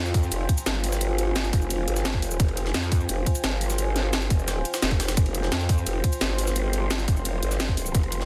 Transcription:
Already playing: wobble bass F2, ambient pad F4 C5 G5 G#5
0.06 snare, shaker
0.14 kick, open hi-hat, ride
0.23 shaker
0.32 wobble bass F1, closed hi-hat, ride, shaker
0.49 kick, closed hi-hat, ride
0.58 ride, shaker
0.66 wobble bass G1, snare, closed hi-hat, ride, shaker
0.84 open hi-hat, ride
0.92 snare, shaker
1.01 closed hi-hat, ride, shaker
1.18 closed hi-hat, ride
1.36 snare, closed hi-hat, ride, shaker
1.44 ride, shaker
1.53 wobble bass F1, kick, open hi-hat, ride
1.62 shaker
1.70 closed hi-hat, ride, shaker
1.88 wobble bass G1, closed hi-hat, ride
1.96 snare, shaker
2.05 snare, closed hi-hat, ride, shaker
2.14 kick, snare
2.22 open hi-hat, ride
2.31 shaker
2.40 wobble bass F1, kick, closed hi-hat, ride, shaker
2.48 ride
2.57 closed hi-hat, ride
2.66 snare
2.74 wobble bass F2, snare, closed hi-hat, ride, shaker
2.83 snare, shaker
2.92 kick, open hi-hat, ride
3.00 shaker
3.09 wobble bass F1, closed hi-hat, ride, shaker
3.26 kick, closed hi-hat, ride
3.35 ride, shaker
3.44 wobble bass G1, snare, closed hi-hat, ride, shaker
3.61 open hi-hat, ride
3.70 snare, shaker
3.78 closed hi-hat, ride, shaker
3.96 snare, closed hi-hat, ride
4.13 snare, closed hi-hat, ride, shaker
4.22 ride, shaker
4.30 wobble bass F1, kick, open hi-hat, ride
4.39 shaker
4.48 snare, closed hi-hat, ride, shaker
4.65 closed hi-hat, ride, shaker
4.74 snare, ride, shaker
4.82 wobble bass F1, snare, closed hi-hat, shaker
4.91 kick, ride
5.00 snare, open hi-hat, ride
5.08 snare, ride, shaker
5.17 wobble bass F1, ambient pad C6, kick, closed hi-hat, ride, shaker
5.26 ride
5.35 closed hi-hat, ride
5.43 snare
5.52 wobble bass F2, snare, closed hi-hat, ride, shaker
5.60 snare, shaker
5.69 kick, open hi-hat, ride
5.78 shaker
5.86 wobble bass F1, closed hi-hat, ride, shaker
6.04 kick, closed hi-hat, ride
6.12 ride, shaker
6.21 wobble bass G1, snare, closed hi-hat, ride, shaker
6.38 open hi-hat, ride
6.47 snare, shaker
6.56 closed hi-hat, ride, shaker
6.73 closed hi-hat, ride
6.91 snare, closed hi-hat, ride, shaker
6.99 ride, shaker
7.08 wobble bass F1, kick, open hi-hat, ride
7.17 shaker
7.25 closed hi-hat, ride, shaker
7.43 wobble bass G1, closed hi-hat, ride
7.51 snare, shaker
7.60 snare, closed hi-hat, ride, shaker
7.69 kick, snare
7.77 open hi-hat, ride
7.86 shaker
7.95 wobble bass F1, kick, closed hi-hat, ride, shaker
8.03 ride
8.12 closed hi-hat, ride
8.21 snare

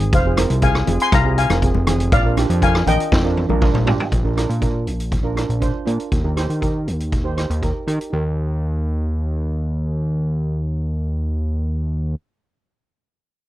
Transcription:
Already playing: analog synth bass G#1, steel pan C4 D#4 G#4
0.00 closed hi-hat
0.13 analog synth bass F1, steel pan C5 F5, kick, closed hi-hat
0.25 steel pan C4 F4 G#4
0.37 steel pan C4 F4 A#4, cross-stick, closed hi-hat, high conga
0.50 analog synth bass C2, closed hi-hat
0.62 steel pan C4 F4 G#4 F5 G#5, kick, closed hi-hat
0.75 cross-stick
0.87 analog synth bass F1, steel pan C4 F4 G#4, closed hi-hat, low conga
1.00 steel pan G#5 C6, closed hi-hat
1.12 analog synth bass C2, steel pan F5 A#5, kick, cross-stick, closed hi-hat, high conga
1.24 steel pan C4 F4 G#4
1.38 steel pan F5 G#5, closed hi-hat
1.50 analog synth bass F1, steel pan C4 F4 A#4, cross-stick, closed hi-hat, high conga, low conga
1.62 steel pan C4 F4 G#4, kick, closed hi-hat
1.74 analog synth bass F1, high conga
1.87 steel pan C4 F4 G#4, cross-stick, closed hi-hat, low conga
2.00 closed hi-hat
2.12 analog synth bass A#1, steel pan D5 F5, kick, closed hi-hat
2.24 steel pan D4 F4 A#4
2.37 steel pan D4 F4 G4, cross-stick, closed hi-hat, high conga
2.50 analog synth bass F2, closed hi-hat
2.61 steel pan D4 F4 A#4 F5 G#5, kick, closed hi-hat
2.75 cross-stick
2.86 analog synth bass A#1, steel pan D4 F4 A#4 D#5 G5, closed hi-hat, low conga
3.00 closed hi-hat
3.12 analog synth bass F2, kick, snare, high conga
3.24 steel pan D4 F4 A#4
3.37 high tom
3.49 analog synth bass A#1, steel pan D4 F4 A#4, high conga, low conga
3.61 steel pan D4 F4 A#4, kick, mid tom
3.74 analog synth bass A#1, mid tom, high conga
3.85 steel pan D4 F4 G4, floor tom
4.00 floor tom
4.12 analog synth bass A#1, kick, closed hi-hat
4.24 analog synth bass A#1, steel pan D4 F4 A#4
4.36 steel pan D4 F4 A#4, cross-stick, closed hi-hat
4.49 analog synth bass A#2, closed hi-hat
4.61 steel pan D4 F4 A#4, kick, closed hi-hat
4.87 analog synth bass A#1, closed hi-hat
5.00 closed hi-hat
5.12 kick, closed hi-hat
5.23 steel pan D4 F4 A#4
5.36 steel pan D4 F4 A#4, cross-stick, closed hi-hat
5.49 analog synth bass A#1, closed hi-hat
5.60 steel pan D4 F4 C5, kick, closed hi-hat
5.85 analog synth bass A#2, steel pan D4 F4 A#4, closed hi-hat
6.00 closed hi-hat
6.12 analog synth bass D#2, kick, closed hi-hat
6.23 analog synth bass D#2, steel pan D#4 G4 A#4
6.36 steel pan D#4 G4 C5, cross-stick, closed hi-hat
6.50 analog synth bass D#3, closed hi-hat
6.61 steel pan D#4 G4 A#4, kick, closed hi-hat
6.87 analog synth bass D#2, closed hi-hat
7.00 closed hi-hat
7.12 kick, closed hi-hat
7.24 steel pan D#4 G4 C5
7.36 steel pan D#4 G4 C5, cross-stick, closed hi-hat
7.50 analog synth bass D#2, closed hi-hat
7.62 steel pan D#4 G4 A#4, kick, closed hi-hat
7.87 analog synth bass D#3, steel pan D#4 G4 A#4, closed hi-hat
8.01 closed hi-hat
8.10 analog synth bass D#2, steel pan D#4 G4
8.15 steel pan A#4

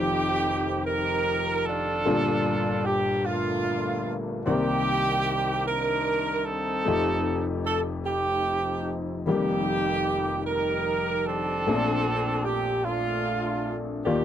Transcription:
Already playing: upright piano F1 F2 D#3 F4 G4 C5, horn section C4 D#4 G4
0.86 horn section D#4 G4 A#4
1.66 horn section D4 F4 A4
2.05 upright piano G1 G2 A#2 F4 G4 A4
2.86 horn section G4
3.25 horn section A3 A#3 F4
4.46 upright piano C2 C3 D#3 A#3 C4 D5, horn section A#3 D#4 G4
5.66 horn section D4 D#4 A#4
6.45 horn section C4 D#4 A4
6.85 upright piano F1 F2 A3 D#4 F4 G4
7.66 horn section A4
8.06 horn section C4 D#4 G4
9.26 upright piano F1 F2 D#3 G3 A#3 G4, horn section A#3 D#4 G4
10.47 horn section D#4 G4 A#4
11.26 horn section C4 D4 A4
11.67 upright piano A#1 A#2 A3 C4 C#4 A4
11.75 upright piano D4
12.45 horn section G4
12.85 horn section A3 D4 F4
14.05 upright piano D#2 D#3 A#3 F4 G4 D5, horn section A#3 D4 G4

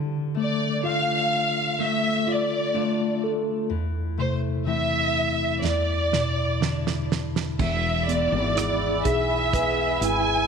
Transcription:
Already playing: tine electric piano D3, steel-string acoustic guitar D3 D4
0.35 steel-string acoustic guitar A3, tine electric piano A3
0.40 violin section D5
0.83 steel-string acoustic guitar A3 D4 F4, tine electric piano F4, violin section F5
1.79 steel-string acoustic guitar A3, tine electric piano A3, violin section E5
2.26 steel-string acoustic guitar F4, tine electric piano F4, violin section D5
2.74 steel-string acoustic guitar A3 D4 F4, tine electric piano A3
3.24 tine electric piano A4
3.70 tine electric piano E2, steel-string acoustic guitar E3
4.18 tine electric piano C3, steel-string acoustic guitar A3, violin section C5
4.66 tine electric piano E3, steel-string acoustic guitar A3 C4 E4, violin section E5
5.63 steel-string acoustic guitar E2, tine electric piano E2, violin section D5, snare
6.12 tine electric piano B2, steel-string acoustic guitar E4, snare
6.60 tine electric piano D3, steel-string acoustic guitar G#3 D4 E4, snare
6.87 snare
7.12 snare
7.36 snare
7.59 fretless electric bass E1, steel-string acoustic guitar E2 E4, tine electric piano E3, analog synth pad G#4 E5 B5 E6, violin section E5, kick, crash
8.08 steel-string acoustic guitar G#3 B3 E4, tine electric piano B3, violin section D5, closed hi-hat
8.32 fretless electric bass G#1
8.56 steel-string acoustic guitar B3, tine electric piano E4, cross-stick, closed hi-hat
9.04 fretless electric bass B1, tine electric piano G#4, violin section E5, kick, closed hi-hat
9.53 steel-string acoustic guitar G#3 B3 E4, tine electric piano B4, kick, closed hi-hat
10.01 fretless electric bass G#1, tine electric piano E4, violin section G#5, closed hi-hat

